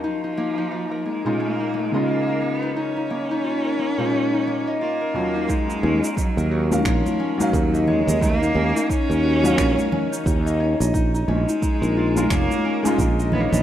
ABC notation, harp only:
X:1
M:4/4
L:1/16
Q:"Swing 16ths" 1/4=88
K:Ebm
V:1 name="Harp"
E E B, E F B B, E D E B, e F B B, E | E E B, E F B B, E D E B, e F B B, E | E E D E E B G B d B D E E e d e | E E D E E B G B d B D E E e d e |
E E D E E B F B d B D E E e d e |]